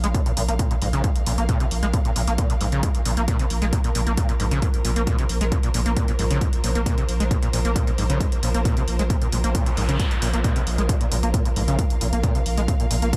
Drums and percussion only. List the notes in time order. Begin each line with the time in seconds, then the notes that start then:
0.04 closed hi-hat
0.14 kick, closed hi-hat
0.26 closed hi-hat
0.37 open hi-hat
0.49 closed hi-hat
0.59 kick, closed hi-hat
0.71 closed hi-hat
0.82 open hi-hat
0.93 closed hi-hat
1.04 kick, closed hi-hat
1.16 closed hi-hat
1.26 open hi-hat
1.38 closed hi-hat
1.49 kick, closed hi-hat
1.60 closed hi-hat
1.71 open hi-hat
1.83 closed hi-hat
1.94 kick, closed hi-hat
2.05 closed hi-hat
2.16 open hi-hat
2.27 closed hi-hat
2.38 kick, closed hi-hat
2.50 closed hi-hat
2.61 open hi-hat
2.72 closed hi-hat
2.83 kick, closed hi-hat
2.95 closed hi-hat
3.05 open hi-hat
3.17 closed hi-hat
3.28 kick, closed hi-hat
3.39 closed hi-hat
3.50 open hi-hat
3.62 closed hi-hat
3.73 kick, closed hi-hat
3.84 closed hi-hat
3.95 open hi-hat
4.07 closed hi-hat
4.17 kick, closed hi-hat
4.29 closed hi-hat
4.40 open hi-hat
4.51 closed hi-hat
4.62 kick, closed hi-hat
4.74 closed hi-hat
4.85 open hi-hat
4.96 closed hi-hat
5.07 kick, closed hi-hat
5.19 closed hi-hat
5.29 open hi-hat
5.41 closed hi-hat
5.52 kick, closed hi-hat
5.63 closed hi-hat
5.74 open hi-hat
5.86 closed hi-hat
5.97 kick, closed hi-hat
6.08 closed hi-hat
6.19 open hi-hat
6.31 closed hi-hat
6.41 kick, closed hi-hat
6.53 closed hi-hat
6.64 open hi-hat
6.75 closed hi-hat
6.86 kick, closed hi-hat
6.98 closed hi-hat
7.09 open hi-hat
7.20 closed hi-hat
7.31 kick, closed hi-hat
7.43 closed hi-hat
7.53 open hi-hat
7.65 closed hi-hat
7.76 kick, closed hi-hat
7.87 closed hi-hat
7.98 open hi-hat
8.10 closed hi-hat
8.20 kick, closed hi-hat
8.32 closed hi-hat
8.43 open hi-hat
8.54 closed hi-hat
8.65 kick, closed hi-hat
8.77 closed hi-hat
8.88 open hi-hat
8.99 closed hi-hat
9.10 kick, closed hi-hat
9.22 closed hi-hat
9.32 open hi-hat
9.44 closed hi-hat
9.55 kick, closed hi-hat
9.66 closed hi-hat
9.77 open hi-hat
9.89 closed hi-hat
10.00 kick, closed hi-hat
10.11 closed hi-hat
10.22 open hi-hat
10.34 closed hi-hat
10.44 kick, closed hi-hat
10.56 closed hi-hat
10.67 open hi-hat
10.78 closed hi-hat
10.89 kick, closed hi-hat
11.01 closed hi-hat
11.12 open hi-hat
11.23 closed hi-hat
11.34 kick, closed hi-hat
11.46 closed hi-hat
11.56 open hi-hat
11.68 closed hi-hat
11.79 kick, closed hi-hat
11.90 closed hi-hat
12.01 open hi-hat
12.13 closed hi-hat
12.23 kick, closed hi-hat
12.35 closed hi-hat
12.46 open hi-hat
12.57 closed hi-hat
12.68 kick, closed hi-hat
12.80 closed hi-hat
12.91 open hi-hat
13.02 closed hi-hat
13.13 kick, closed hi-hat